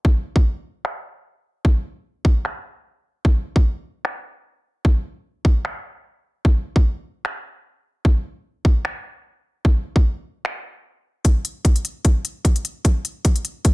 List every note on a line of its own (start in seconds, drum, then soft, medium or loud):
0.05 kick loud
0.36 kick loud
0.85 finger snap medium
1.65 kick loud
2.25 kick loud
2.45 finger snap medium
3.25 kick loud
3.56 kick medium
4.05 finger snap medium
4.85 kick loud
5.45 kick loud
5.65 finger snap medium
6.45 kick loud
6.76 kick medium
7.25 finger snap medium
8.05 kick loud
8.65 kick medium
8.85 finger snap medium
9.65 kick loud
9.96 kick medium
10.45 finger snap medium
11.25 kick medium
11.25 closed hi-hat medium
11.45 closed hi-hat medium
11.65 kick medium
11.65 closed hi-hat medium
11.76 closed hi-hat medium
11.85 closed hi-hat medium
12.05 kick medium
12.05 closed hi-hat medium
12.25 closed hi-hat medium
12.45 kick medium
12.45 closed hi-hat medium
12.56 closed hi-hat medium
12.65 closed hi-hat medium
12.85 kick medium
12.85 closed hi-hat medium
13.05 closed hi-hat medium
13.25 kick loud
13.25 closed hi-hat medium
13.36 closed hi-hat medium
13.45 closed hi-hat medium
13.65 kick medium
13.65 closed hi-hat medium